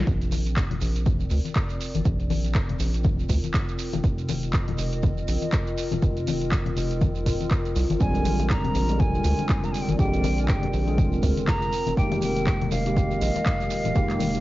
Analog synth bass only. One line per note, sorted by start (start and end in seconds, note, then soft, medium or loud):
0.07 0.63 A#1 loud
0.81 1.25 A#1 medium
1.31 1.40 D2 medium
1.95 2.02 G#1 medium
2.05 2.61 A#1 loud
2.80 3.23 A#1 medium
3.29 3.39 D2 medium
3.93 4.00 F1 medium
4.04 4.59 F1 loud
4.78 5.22 F1 medium
5.28 5.37 A#1 medium
5.92 5.98 D#1 medium
6.02 6.58 F1 loud
6.77 7.28 F1 loud
7.26 7.35 D#1 medium
7.76 7.85 C2 medium
7.90 7.97 G#1 loud
8.01 8.56 A#1 loud
8.75 9.18 A#1 loud
9.25 9.34 D2 medium
9.88 9.95 G#1 medium
9.99 10.54 A#1 loud
10.73 11.17 A#1 loud
11.23 11.32 D2 medium
11.87 11.93 F1 medium
11.97 12.53 F1 loud
12.72 13.15 F1 loud
13.21 13.30 A#1 medium
13.85 13.92 D#1 medium
13.96 14.40 F1 loud